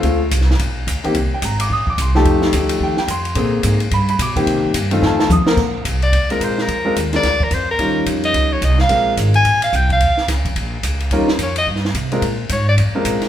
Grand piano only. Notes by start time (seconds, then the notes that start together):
Already playing: F5
0.04 D3 A3 C4 F4
1.04 D#3 A#3 C4 G4
1.34 G5
1.45 A#5
1.61 D6
1.72 D#6
1.90 D6
2.02 C6
2.15 F3 A3 D#4 G4 A5
2.54 F3 A3 D#4 G4
2.83 G5
2.99 G5
3.11 C6
3.35 D3 A#3 C4 G#4
3.94 B5
4.10 B5
4.22 D6
4.36 D#3 A#3 C4 G4
4.91 D#3 A3 C4 F4
5.02 G#5
5.06 A5
5.16 G#5
5.20 A5
5.32 D#6
5.46 D3 A#3 C4 A#4
6.30 G#3 C4 D4 F4 A#4
6.85 G#3 C4 D4 F4 A#4
7.14 G#3 C4 D4 F4 A#4
7.79 G3 C#4 D#4 F4 A#4
8.89 G#3 C4 D4 F4 A#4
11.12 G3 C#4 D#4 F4 A#4
12.12 G#3 C4 D4 F4 A#4
12.95 G#3 C4 D4 F4 A#4